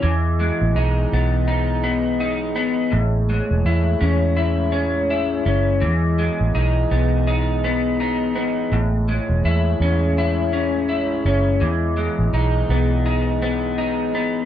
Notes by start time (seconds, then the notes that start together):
Already playing: E3 C#4
0.02 E2 E3 B3 G#4 D#5
0.40 G#3
0.61 A1
0.76 B1 D#4
1.13 B1 B3
1.48 D#4
1.84 B3
2.20 D#4
2.56 G#1 B3
2.92 A1 A2 G#3 G#4 C#5
3.30 G#3
3.51 E1
3.65 E2 E4
4.01 E2 C#4
4.37 E4
4.72 C#4
5.10 E4
5.46 F#1 C#4
5.82 E2 E3 B3 D#5
6.19 G#3
6.41 A1
6.55 B1 D#4
6.91 B1 B3
7.27 D#4
7.64 B3
8.00 D#4
8.35 G#1 B3
8.72 A1 A2 G#3 C#5
9.09 G#3
9.29 E1
9.44 E2 E4
9.80 E2 C#4
10.18 E4
10.53 C#4
10.89 E4
11.25 F#1 C#4
11.61 E2 E3 B3 D#5
11.97 G#3
12.19 A1
12.33 B1 D#4
12.69 B1 B3
13.06 D#4
13.42 B3
13.78 D#4
14.13 G#1 B3